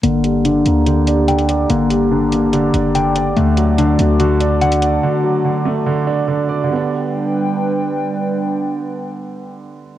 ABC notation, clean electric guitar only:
X:1
M:4/4
L:1/8
Q:1/4=144
K:Gm
V:1 name="Clean electric guitar"
B,2 D2 G2 g2 | B,2 D2 G2 g2 | A,2 D2 ^F2 ^f2- | ^f8 |
z8 | z8 |]